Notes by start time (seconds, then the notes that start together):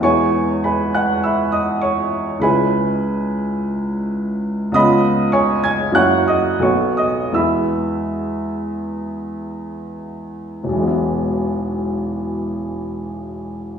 0.01 E2 G#3 B3 E4 C#5 G#5 C#6
0.64 B4 G#5 B5
0.95 F#5 F#6
1.24 E5 B5 E6
1.52 D#5 D#6
1.82 C#5 C#6
2.39 C#2 G#3 C#4 E4 B4 G#5 B5
4.72 C#2 B3 C#4 F4 D#5 B5 D#6
5.32 C#5 G#5 C#6
5.64 G#5 G#6
5.92 F#2 A#3 C#4 E4 F#5 C#6 F#6
6.28 D#5 D#6
6.59 B1 A3 B3 F#4 C#5 C#6
6.97 D#5 D#6
7.32 E2 G#3 B3 E4 E5 B5 E6
10.64 E1
10.69 B1
10.73 E3
10.78 G#3
10.82 B3
10.87 E4